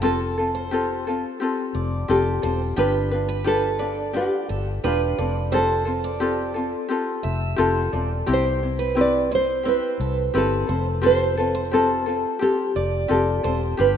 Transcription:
Already playing: fingered electric bass F1
0.01 ukulele C4 F4 G4 A4, steel-string acoustic guitar A4, nylon-string guitar A4
0.38 ukulele C4 F4 A4
0.55 steel-string acoustic guitar C5
0.71 ukulele C4 F4 G4 A4
1.07 ukulele C4 F4 A4
1.40 ukulele C4 F4 G4 A4
1.75 fingered electric bass F1, steel-string acoustic guitar D5
2.08 fingered electric bass F1, ukulele C4 F4 G4 A4, nylon-string guitar G4
2.42 fingered electric bass E1, ukulele C4 F4 A4, steel-string acoustic guitar C5
2.76 fingered electric bass G1, ukulele D4 F4 G4 B4, steel-string acoustic guitar G4, nylon-string guitar B4
3.11 ukulele D4 F4 B4
3.29 steel-string acoustic guitar B4
3.44 ukulele D4 F4 G4 B4, nylon-string guitar A4
3.79 ukulele D4 F4 B4, steel-string acoustic guitar D5
4.13 ukulele D4 F4 G4 B4, nylon-string guitar G4, steel-string acoustic guitar D5
4.49 fingered electric bass G1, steel-string acoustic guitar A4
4.84 fingered electric bass E1, ukulele D4 F4 G4 B4, nylon-string guitar F4, steel-string acoustic guitar B4
5.18 fingered electric bass F1, ukulele C4 F4 A4, steel-string acoustic guitar D5
5.52 ukulele C4 F4 G4 A4, steel-string acoustic guitar C5
5.56 nylon-string guitar A4
5.85 ukulele C4 F4 A4
6.04 steel-string acoustic guitar D5
6.20 ukulele C4 F4 G4 A4
6.54 ukulele C4 F4 A4
6.89 ukulele C4 F4 G4 A4
7.23 fingered electric bass F1, steel-string acoustic guitar E5
7.56 fingered electric bass F1, ukulele C4 F4 G4 A4
7.93 fingered electric bass E1, ukulele C4 F4 A4, steel-string acoustic guitar D5
8.26 fingered electric bass C2, ukulele C4 E4 G4, steel-string acoustic guitar G4
8.33 nylon-string guitar C5
8.63 ukulele C4 E4
8.79 steel-string acoustic guitar B4
8.95 ukulele C4 E4 G4 B4
9.01 nylon-string guitar D5
9.31 ukulele C4 E4, steel-string acoustic guitar C5
9.35 nylon-string guitar C5
9.63 ukulele C4 E4 G4 B4, steel-string acoustic guitar C4
9.68 nylon-string guitar B4
10.00 fingered electric bass C2, steel-string acoustic guitar A4
10.34 fingered electric bass G1, ukulele C4 E4 G4 B4, nylon-string guitar A4, steel-string acoustic guitar B4
10.67 fingered electric bass F1, ukulele C4 F4 A4, steel-string acoustic guitar C5
11.02 ukulele C4 F4 G4 A4, steel-string acoustic guitar A4
11.06 nylon-string guitar C5
11.37 ukulele C4 F4 A4
11.55 steel-string acoustic guitar C5
11.71 ukulele C4 F4 G4 A4, nylon-string guitar A4
12.06 ukulele C4 F4 A4
12.39 ukulele C4 F4 G4 A4, nylon-string guitar G4
12.76 fingered electric bass F1, steel-string acoustic guitar D5
13.08 fingered electric bass F1, ukulele C4 F4 G4 A4
13.13 nylon-string guitar G4
13.43 fingered electric bass E1, ukulele C4 F4 A4, steel-string acoustic guitar C5
13.77 fingered electric bass G1, ukulele D4 F4 G4 B4, steel-string acoustic guitar G4, nylon-string guitar B4

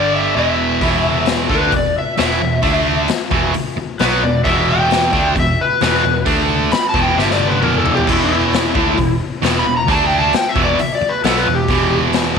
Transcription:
Already playing: picked electric bass G1, distorted electric guitar G2 D3 G3, electric slide guitar D5
0.16 electric slide guitar E5
0.36 picked electric bass E1, distorted electric guitar E2 B2 E3, electric slide guitar E5
0.81 picked electric bass E1, distorted electric guitar E2 B2 E3, kick, open hi-hat
1.26 snare, open hi-hat
1.49 picked electric bass D2, distorted electric guitar D3 A3 D4, electric slide guitar B4, kick
1.72 picked electric bass E1, distorted electric guitar E2 B2, kick, open hi-hat
1.76 electric slide guitar D5
1.98 electric slide guitar E5
2.17 picked electric bass E1, distorted electric guitar E2 B2 E3, electric slide guitar E5, snare, open hi-hat
2.31 snare
2.41 picked electric bass E1, distorted electric guitar E2 B2
2.62 picked electric bass D2, distorted electric guitar D3 A3 D4, kick, open hi-hat
3.08 muted distorted electric guitar stroke, muted picked electric bass stroke, snare, open hi-hat
3.31 picked electric bass E1, distorted electric guitar E2 B2 E3, kick
3.54 muted distorted electric guitar stroke, muted picked electric bass stroke, open hi-hat
3.77 muted distorted electric guitar stroke, muted picked electric bass stroke
3.99 picked electric bass B1, distorted electric guitar B2 F#3 B3, electric slide guitar B4, snare, open hi-hat
4.22 picked electric bass E1, distorted electric guitar E2 B2, electric slide guitar D5
4.44 picked electric bass E1, distorted electric guitar E2 B2 E3, electric slide guitar E5, kick, open hi-hat
4.70 electric slide guitar G5
4.91 snare, open hi-hat
5.13 picked electric bass D2, distorted electric guitar D3 A3 D4, kick
5.35 picked electric bass E1, distorted electric guitar E2 B2, kick, open hi-hat
5.40 electric slide guitar E5
5.61 electric slide guitar B4
5.81 picked electric bass E1, distorted electric guitar E2 B2 E3, electric slide guitar B4, snare, open hi-hat
5.95 snare
6.04 picked electric bass E1, distorted electric guitar E2 B2
6.26 picked electric bass D2, distorted electric guitar D3 A3 D4, kick, open hi-hat
6.72 electric slide guitar B5, muted distorted electric guitar stroke, muted picked electric bass stroke, snare, open hi-hat
6.89 electric slide guitar A5
6.94 picked electric bass E1, distorted electric guitar E2 B2 E3, kick
7.02 electric slide guitar G5
7.16 picked electric bass G1, distorted electric guitar G2 D3 G3, electric slide guitar E5, snare
7.31 electric slide guitar D5, snare
7.40 high tom
7.47 electric slide guitar B4
7.52 high tom
7.61 picked electric bass E1, distorted electric guitar E2 B2 E3, electric slide guitar A#4, mid tom
7.74 electric slide guitar A4, mid tom
7.86 floor tom
7.94 electric slide guitar G4, floor tom
8.07 picked electric bass E1, distorted electric guitar E2 B2 E3, electric slide guitar E4, kick, open hi-hat, crash
8.24 electric slide guitar E4
8.53 snare, open hi-hat
8.74 picked electric bass D2, distorted electric guitar D3 A3 D4, kick
8.97 picked electric bass E1, distorted electric guitar E2 B2, kick, open hi-hat
9.42 picked electric bass E1, distorted electric guitar E2 B2 E3, snare, open hi-hat
9.56 electric slide guitar B5, snare
9.65 picked electric bass E1, distorted electric guitar E2 B2
9.77 electric slide guitar A#5
9.87 picked electric bass D2, distorted electric guitar D3 A3 D4, electric slide guitar A5, kick, open hi-hat
10.07 electric slide guitar G5
10.19 electric slide guitar A5
10.33 electric slide guitar G5, muted distorted electric guitar stroke, muted picked electric bass stroke, snare, open hi-hat
10.49 electric slide guitar E5
10.55 picked electric bass E1, distorted electric guitar E2 B2 E3, kick
10.64 electric slide guitar D5
10.79 electric slide guitar E5, muted distorted electric guitar stroke, open hi-hat
10.95 electric slide guitar D5
11.01 muted picked electric bass stroke, muted distorted electric guitar stroke
11.09 electric slide guitar B4
11.24 picked electric bass B1, distorted electric guitar B2 F#3 B3, electric slide guitar A4, snare, open hi-hat
11.37 electric slide guitar B4, snare
11.47 picked electric bass E1, distorted electric guitar E2 B2
11.54 electric slide guitar G4
11.68 picked electric bass E1, distorted electric guitar E2 B2 E3, kick, open hi-hat
12.13 snare, open hi-hat

